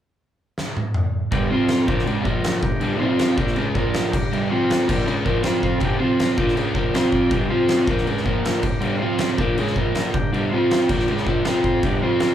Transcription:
0.58 snare
0.77 high tom
0.94 mid tom
1.31 G2 D3 G3 D4 G4 A#4, kick, crash
1.50 F3 C4 F4 C5
1.68 snare, crash
1.87 A#2 F3 A#3 D4 G4 A#4, kick
1.99 snare
2.06 C#3 G#3 C#4, crash
2.24 A#2 F3 A#3 F4 A#4, kick
2.44 snare, crash
2.61 G2 D3 D4 G4 A#4, kick
2.80 G2 D3 G3, crash
2.99 F3 C4 F4 C5
3.19 snare, crash
3.37 A#2 F3 A#3 D4 G4 A#4, kick
3.47 snare
3.56 C#3 G#3 C#4, crash
3.75 A#2 F3 A#3 F4 A#4, kick
3.94 snare, crash
4.10 G2 D3 D4 G4 A#4, kick
4.14 crash
4.32 G2 D3 G3, crash
4.50 F3 C4 F4 C5
4.70 snare, crash
4.88 A#2 F3 A#3 D4 G4 A#4, kick, crash
5.06 C#3 G#3 C#4, crash
5.24 A#2 F3 A#3 D4 G4 A#4, kick
5.43 F3 C4 F4 C5, snare, crash
5.63 C4 F4 C5, kick
5.80 G2 D3 G3 A#4, kick, crash
5.85 D4 G4
5.99 F3 C4 F4 C5
6.19 snare, crash
6.37 A#2 F3 A#3 D4 G4 A#4, kick
6.48 snare
6.56 C#3 G#3 C#4, crash
6.75 A#2 F3 A#3 D4 G4 A#4, kick
6.94 F3 C4 F4 C5, snare, crash
7.12 C4 F4 D5, kick
7.30 G2 D3 G3 D4 G4 A#4, kick, crash
7.49 F3 C4 F4 C5
7.68 snare, crash
7.87 A#2 F3 A#3 G4 A#4, kick
7.92 D4
7.98 snare
8.07 C#3 G#3 C#4, crash
8.17 snare
8.25 A#2 F3 A#3 F4 A#4, kick
8.45 snare, crash
8.62 G2 D3 D4 G4 A#4, kick, crash
8.81 G2 D3 G3, crash
8.97 C4 F4 C5
9.01 F3 C4 F4
9.18 snare, crash
9.37 A#2 F3 A#3 D4 G4 A#4, kick
9.58 C#3 G#3 C#4, crash
9.67 snare
9.75 A#2 F3 A#3 F4 A#4, kick
9.93 A#5, snare, crash
10.13 G2 D3 D4 G4 A#4 G5, kick
10.33 G2 D3 G3, crash
10.50 F3 C4 F4 C5
10.54 F4
10.71 snare, crash
10.87 A#2 F3 A#3 D4 G4 A#4, kick, crash
11.00 snare
11.08 C#3 G#3 C#4, crash
11.17 snare
11.24 A#2 F3 A#3 D4 G4 A#4, kick
11.44 F3 C4 F4 C5, snare, crash
11.64 C4 F4 C5, kick
11.82 G2 D3 G3 D4 G4 A#4, kick, crash
12.01 F3 C4 F4 C5
12.20 snare, crash

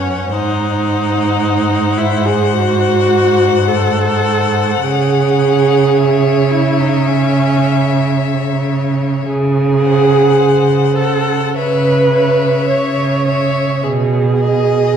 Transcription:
Already playing: F#2 C#4 C#5 F#5
0.33 G#2 D#4 C5 F#5
1.98 E4
2.25 G#4
2.54 F#4
3.68 A4
4.83 C#3 G#4 C#5
5.97 E5
6.51 E4
6.80 D#4
7.07 C#4
9.27 C#3 G#4
9.82 C5 F#5
10.39 C#3
10.95 A4 C5 F#5
11.55 C#3 B4 C#5 E5
12.14 C#5 E5
12.69 C#3 C#5
13.27 C#5 E5
13.84 B2 G#4
14.42 D#5

